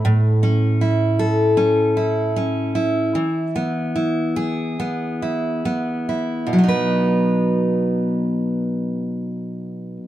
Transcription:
X:1
M:4/4
L:1/8
Q:"Swing 16ths" 1/4=71
K:Bmix
V:1 name="Steel-string acoustic guitar"
A,, C E A C E C E | E, B, E G B, E B, E | [B,,F,B,DB]8 |]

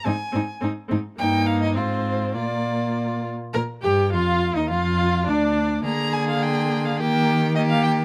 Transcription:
X:1
M:2/4
L:1/16
Q:1/4=105
K:Eb
V:1 name="Violin"
a4 z4 | g2 f e c4 | d6 z2 | b2 g2 f3 e |
f4 d4 | b2 a f g3 f | g4 e f g2 |]
V:2 name="Violin"
E2 E2 E2 E2 | E4 F4 | F6 z2 | B2 G2 F3 E |
F4 D4 | A8 | G4 G4 |]
V:3 name="Viola"
C2 C2 C2 C2 | B,4 C4 | B,6 z2 | B2 G2 F3 E |
F4 D4 | B,8 | B,4 B,4 |]
V:4 name="Cello" clef=bass
A,,2 A,,2 A,,2 A,,2 | G,,4 A,,4 | B,,6 z2 | B,,2 G,,2 F,,3 E,, |
F,,4 D,,4 | D,8 | E,8 |]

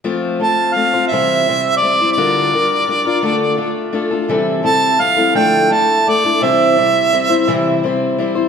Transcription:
X:1
M:6/8
L:1/16
Q:3/8=56
K:F
V:1 name="Harmonica"
z2 a2 f2 e4 d2 | d8- d2 z2 | z2 a2 f2 g2 a2 d2 | e8 z4 |]
V:2 name="Steel-string acoustic guitar"
[F,A,CFc]2 [A,CFc]2 [A,CFc] [CFc] [C,E,G,CEc]2 [G,CEc]2 [G,CEc] [G,CEc] | [D,G,DFB]2 [G,DFB]2 [G,DFB] [DFB] [D,A,DFA]2 [A,DFA]2 [A,DFA] [DFA] | [C,E,G,CEA]2 [G,CEA]2 [G,CEA] [G,CEA] [D,F,A,DEA]2 [A,DEA]2 [A,DEA] [A,DEA] | [C,E,G,CEc]2 [G,CEc]2 [G,CEc] [G,CEc] [C,E,G,CEc]2 [G,CEc]2 [G,CEc] [G,CEc] |]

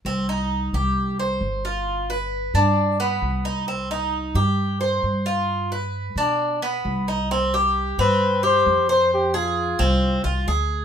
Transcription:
X:1
M:4/4
L:1/8
Q:1/4=132
K:Cm
V:1 name="Muted trumpet"
z8 | z8 | z8 | z8 |
[K:Fdor] z3 =B2 c2 c | G F4 z3 |]
V:2 name="Cuban tres"
C E2 G2 c2 F- | F =B2 D2 =B,2 E | C E2 G2 c2 F- | F =B2 D2 =B,2 E |
[K:Fdor] C G2 C2 G2 c- | c A2 C2 F A2 |]
V:3 name="Upright bass" clef=bass
C,,3 C,,3 G,,,2- | G,,,3 G,,3 C,,2- | C,,3 G,,3 G,,2- | G,,3 =B,,3 C,,2- |
[K:Fdor] C,,3 G,,3 F,,2- | F,,3 C,,2 C,, D,,2 |]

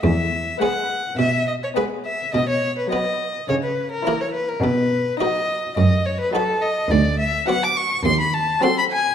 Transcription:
X:1
M:4/4
L:1/16
Q:1/4=105
K:Bmix
V:1 name="Violin"
e4 f4 e2 d c B2 e2 | d c2 B d4 c B2 ^A2 c B A | B4 d4 d2 c B A2 d2 | [K:Bdor] d2 e2 f d' c'2 ^b =b a2 ^b =b g2 |]
V:2 name="Violin section"
z4 B4 z4 B4 | z4 B4 z4 ^A4 | z4 F4 z4 F4 | [K:Bdor] z4 F4 z4 F4 |]
V:3 name="Harpsichord"
E,,4 [G,B,B]4 B,,4 [G,B,B]4 | B,,4 [B,B]4 C,4 [^A,E^A]4 | B,,4 [DFB]4 F,,4 [DFB]4 | [K:Bdor] D,,4 [DFB]4 ^D,,4 [^B,FA]4 |]
V:4 name="Violin section"
z4 B,4 z4 B,4 | z4 B,4 z4 E4 | z4 D4 z4 D4 | [K:Bdor] z4 B,4 z4 ^B,4 |]
V:5 name="Viola section" clef=bass
z4 G,4 z4 G,4 | z4 F,4 z4 E,4 | z4 F,4 z4 F,4 | [K:Bdor] z4 F,4 z4 F,4 |]
V:6 name="Cello section" clef=bass
E,,4 z4 B,,4 z4 | B,,4 z4 C,4 z4 | B,,4 z4 F,,4 z4 | [K:Bdor] D,,4 z4 ^D,,4 z4 |]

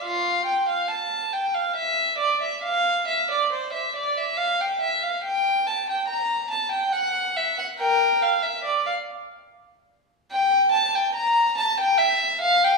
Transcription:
X:1
M:3/4
L:1/16
Q:1/4=70
K:F
V:1 name="Violin"
[Ff]2 g f a2 g f e2 d e | f2 e d c e d e f g e f | g2 a g b2 a g _g2 e g | [Bg]2 f e d f z6 |
[K:Gdor] g2 a g b2 a g e2 f g |]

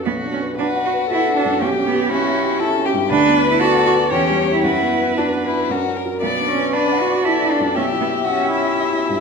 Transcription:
X:1
M:3/4
L:1/16
Q:1/4=117
K:Bm
V:1 name="Viola"
F4 B4 A4 | G4 F4 E2 G2 | B4 d4 c4 | B8 ^A2 z2 |
d4 d8 | e4 e8 |]
V:2 name="Violin"
z4 F8 | G4 E4 A2 G2 | B4 A4 G4 | F4 D2 E2 F2 ^A2 |
d4 B4 A4 | G4 F2 E6 |]
V:3 name="Grand piano"
(3B,,,2 D2 B2 (3d2 f2 B2 (3F2 D2 F,,2 | (3B,,,2 C2 G2 (3c2 e2 G2 (3E2 C2 G,,2 | (3D,,2 B,2 B2 (3F2 f2 B2 (3E,,2 G,2 [Gc]2 | (3F,,2 B,2 B2 (3F2 f2 B2 (3F,,2 C2 [F^A]2 |
(3B,,,2 D2 B2 (3d2 f2 B2 (3F2 D2 F,,2 | (3B,,,2 E2 e2 (3G2 g2 e2 (3G2 E2 G,,2 |]
V:4 name="Cello"
B,2 C2 D2 F2 E2 D2 | C2 B,2 C6 z2 | D3 E F2 F2 C3 E | E4 D4 z4 |
B,2 C2 D2 F2 E2 D2 | C2 B,2 C6 z2 |]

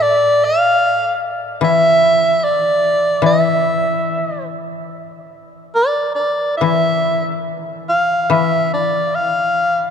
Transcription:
X:1
M:4/4
L:1/8
Q:1/4=73
K:none
V:1 name="Soprano saxophone"
d f2 z e2 d2 | e3 z3 d d | e2 z f e d f2 |]
V:2 name="Koto" clef=bass
A,,2 z2 E,4 | E,6 z2 | E,4 E,4 |]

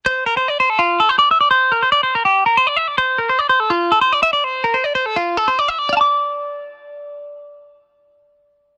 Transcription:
X:1
M:7/8
L:1/16
Q:1/4=144
K:Dm
V:1 name="Clean electric guitar"
c2 B c d c A F2 A c d e d | c2 B c d c B G2 B c d e d | c2 B c d c A F2 A c d e d | c2 B c d c A F2 A c d e d |
[dfad']12- [dfad']2- | [dfad']12- [dfad']2 |]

